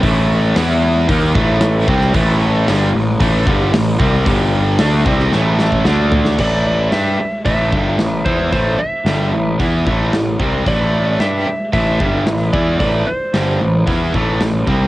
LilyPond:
<<
  \new Staff \with { instrumentName = "Lead electric guitar" } { \time 4/4 \key a \minor \tempo 4 = 112 r1 | r1 | r1 | d''8 d''8 e''4 e''4. c''8 |
c''8 e''4. r2 | d''4 e''4 e''4. d''8 | d''8 c''4. r2 | }
  \new Staff \with { instrumentName = "Distorted electric guitar" } { \clef bass \time 4/4 \key a \minor <a, e a>4 <e b e'>4 <dis bes dis'>8 <a, e a>4 <c g c'>8 | <a, e a>4 <g, d g>8 <a, e>8 <a, e a>8 <g, d g>8 <a, e>8 <c g c'>8 | <g, d g>4 <d a d'>8 <c g c'>8 <a, e a>4 <d a d'>4 | <a, e a>4 <g d' g'>8 r8 <a, e a>8 <g, d g>8 <a, e>8 <e b e'>8 |
<a, e a>8 r8 <g, d g>8 <a, e>8 <e b e'>8 <a, e a>8 <a, e>8 <c g c'>8 | <a, e a>4 <g d' g'>8 r8 <a, e a>8 <g, d g>8 <a, e>8 <e b e'>8 | <a, e a>8 r8 <g, d g>8 <a, e>8 <e b e'>8 <a, e a>8 <a, e>8 <c g c'>8 | }
  \new Staff \with { instrumentName = "Distorted electric guitar" } { \clef bass \time 4/4 \key a \minor <a, e a>4 <e b e'>4 <dis bes dis'>8 <a, e a>4 <c g c'>8 | <a, e a>4 <g, d g>8 <a, e>8 <a, e a>8 <g, d g>8 <a, e>8 <c g c'>8 | <g, d g>4 <d a d'>8 <c g c'>8 <a, e a>4 <d a d'>4 | <a, e a>4 <g d' g'>8 r8 <a, e a>8 <g, d g>8 <a, e>8 <e b e'>8 |
<a, e a>8 r8 <g, d g>8 <a, e>8 <e b e'>8 <a, e a>8 <a, e>8 <c g c'>8 | <a, e a>4 <g d' g'>8 r8 <a, e a>8 <g, d g>8 <a, e>8 <e b e'>8 | <a, e a>8 r8 <g, d g>8 <a, e>8 <e b e'>8 <a, e a>8 <a, e>8 <c g c'>8 | }
  \new Staff \with { instrumentName = "Overdriven electric guitar" } { \clef bass \time 4/4 \key a \minor <a, e a>4 <e b e'>4 <dis bes dis'>8 <a, e a>4 <c g c'>8 | <a, e a>4 <g, d g>8 <a, e>8 <a, e a>8 <g, d g>8 <a, e>8 <c g c'>8 | <g, d g>4 <d a d'>8 <c g c'>8 <a, e a>4 <d a d'>4 | <a, e a>4 <g d' g'>8 r8 <a, e a>8 <g, d g>8 <a, e>8 <e b e'>8 |
<a, e a>8 r8 <g, d g>8 <a, e>8 <e b e'>8 <a, e a>8 <a, e>8 <c g c'>8 | <a, e a>4 <g d' g'>8 r8 <a, e a>8 <g, d g>8 <a, e>8 <e b e'>8 | <a, e a>8 r8 <g, d g>8 <a, e>8 <e b e'>8 <a, e a>8 <a, e>8 <c g c'>8 | }
  \new Staff \with { instrumentName = "Picked electric bass" } { \clef bass \time 4/4 \key a \minor a,,4 e,4 dis,8 a,,4 c,8 | a,,4 g,,8 a,,8 a,,8 g,,8 a,,8 c,8 | g,,4 d,8 c,8 a,,4 d,4 | a,,4 g,8 r8 a,,8 g,,8 a,,8 e,8 |
a,,8 r8 g,,8 a,,8 e,8 a,,8 a,,8 c,8 | a,,4 g,8 r8 a,,8 g,,8 a,,8 e,8 | a,,8 r8 g,,8 a,,8 e,8 a,,8 a,,8 c,8 | }
  \new DrumStaff \with { instrumentName = "Drums" } \drummode { \time 4/4 <hho bd>4 <hho sn>4 <hho bd>8 bd8 <hho sn>8 bd16 sn16 | <hho bd>4 <hho sn>4 <hho bd>8 bd8 <hho sn>8 bd8 | <hho bd>4 <hho sn>8 bd16 sn16 sn8 sn16 bd16 sn8 tomfh16 sn16 | <cymc bd>4 <hho sn>4 <hho bd>8 bd8 <hho sn>8 bd8 |
<hho bd>4 <hho sn>4 <hho bd>8 bd8 <hho sn>8 bd8 | <hho bd>4 <hho sn>4 <hho bd>8 bd8 <hho sn>8 bd8 | <hho bd>4 <hho sn>4 <hho bd>8 bd8 <hho sn>8 bd8 | }
>>